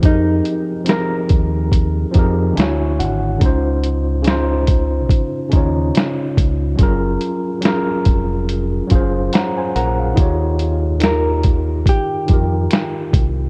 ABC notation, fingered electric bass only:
X:1
M:4/4
L:1/8
Q:"Swing 16ths" 1/4=71
K:Dblyd
V:1 name="Fingered electric bass" clef=bass
F,, z2 E,,2 F,, =D,, A,,, | D,,4 z E,, z D,, | _G,,, z2 F,,,2 G,,, z B,,, | E,,4 z F,, z C,, |]